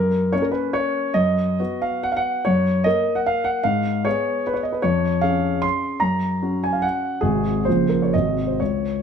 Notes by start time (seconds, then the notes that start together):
Already playing: F#2 A#4
0.32 A#3 C#4 C#5
0.42 A#4
0.52 B4
0.73 C#5
1.14 F#2 D#5
1.60 B3 F#4
1.82 F5
2.03 F#5
2.12 F5
2.17 F#5
2.45 F#2 C#5
2.84 A#3 A#4 D#5
3.15 F#5
3.26 F5
3.44 F#5
3.64 G#2 F5
4.05 B3 G#4 C#5
4.47 B4
4.54 C#5
4.63 D#5
4.72 B4
4.82 F2 C#5
5.21 C#4 G#4 F5
5.62 C6
6.00 F#2 A#5
6.42 C#4 F#4
6.64 G#5
6.73 F5
6.82 F#5
7.21 G#1 C3 G#3 F#4 G#4
7.65 A#1 C#3 F3 F4 C5
7.89 A#4
8.02 C#5
8.13 G#1 C3 G#3 F#4 D#5
8.47 C5
8.60 C#2 C#5